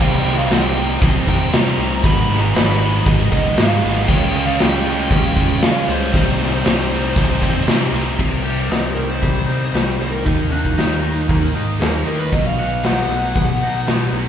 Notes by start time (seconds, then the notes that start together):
Already playing: C5
0.00 C2 C3 G3 C4 D#4 G4 G5, kick, crash
0.24 C2 C3 G3 C4 D#4, snare
0.38 F5
0.49 C2 C3 G3 C4 D#4 G5, snare, open hi-hat
0.75 C3 G3 C4 D#4
1.01 C2 C3 G3 C4 D#4, kick, open hi-hat
1.26 F2 C3 G3 C4 D#4 G5, kick
1.52 C3 G3 C4 D#4 A#5, snare, open hi-hat
1.77 C2 C3 G3 C4 D#4
2.03 G#1 G#2 D#3 G#3 B3 D#4 G#4 B4 D#5 B5, kick, open hi-hat
2.29 G#1 G#2 D#3 G#3 B3 D#4, snare
2.41 A#5
2.54 G#1 G#2 D#3 G#3 B3 D#4 B5, snare, open hi-hat
2.80 G#2 D#3 G#3 B3 D#4
3.05 G#1 G#2 D#3 G#3 B3 D#4, kick, open hi-hat
3.32 C#2 G#2 D#3 G#3 B3 D#4 D#5, kick
3.56 G#2 D#3 G#3 B3 D#4 F5, snare, open hi-hat
3.82 G#1 G#2 D#3 G#3 B3 D#4, snare
4.07 C#2 C#3 G#3 C#4 F4 C#5 G5, kick, crash
4.33 C#2 C#3 G#3 C#4 F4
4.47 F5
4.58 C#2 C#3 G#3 C#4 F4 G5, snare, open hi-hat
4.85 C#3 G#3 C#4 F4
4.89 F4
5.10 C#2 C#3 G#3 C#4 F4 G5, kick, open hi-hat
5.35 F2 C#3 G#3 C#4 F4 G5, kick
5.62 C#3 G#3 C#4 F4 F5, snare, open hi-hat
5.87 C#2 C#3 G#3 C#4 F4 C5, snare
6.12 C2 C3 G3 C4 D#4 G4 C5 G5, kick, open hi-hat
6.38 C2 C3 G3 C4 D#4, snare
6.63 C2 C3 G3 C4 D#4, snare, open hi-hat
6.89 C3 G3 C4 D#4
7.15 C2 C3 G3 C4 D#4, kick, open hi-hat
7.41 F2 C3 G3 C4 D#4, kick
7.66 C3 G3 C4 D#4, snare, open hi-hat
7.91 C2 C3 G3 C4 D#4, snare
7.95 D#4
8.18 C2 C3 G3 C4, kick, crash
8.43 C3 G3 C4 G4, open hi-hat
8.69 C2 C3 G3 C4 D#4, snare, open hi-hat
8.95 C2 C3 D#3 G3 C4 A#4, open hi-hat
9.10 C5
9.22 C2 C3 G3 C4, kick, open hi-hat
9.46 C2 C3 G3 C4 D#4, open hi-hat
9.73 C2 C3 G3 C4, snare, open hi-hat
9.89 snare
9.98 C2 C3 D#3 G3 C4, open hi-hat
10.11 A#4
10.24 D#2 D#3 A#3 D#4, kick, open hi-hat
10.51 D#3 A#3 D#4 F#4, open hi-hat
10.65 kick
10.77 D#2 D#3 A#3 D#4, snare, open hi-hat
11.02 D#3 A#3 D#4, open hi-hat
11.28 D#2 D#3 A#3 D#4, kick, open hi-hat
11.54 G#2 D#3 A#3 D#4, open hi-hat
11.80 D#2 D#3 A#3 D#4 A#4, snare, open hi-hat
11.94 D#4
12.05 D#2 D#3 A#3 D#4 A#4, open hi-hat
12.19 B4
12.32 B1 B2 F#3 B3 D#5, kick, open hi-hat
12.47 F5
12.58 B2 F#3 B3 F#4, open hi-hat
12.83 B1 B2 F#3 B3 D#4 F#5, snare, open hi-hat
13.09 B1 B2 F#3 B3, open hi-hat
13.36 B1 B2 F#3 B3, kick, open hi-hat
13.61 B1 B2 F#3 B3 D#4, open hi-hat
13.86 B1 B2 F#3 B3, snare, open hi-hat
14.11 B1 B2 F#3, open hi-hat
14.15 B3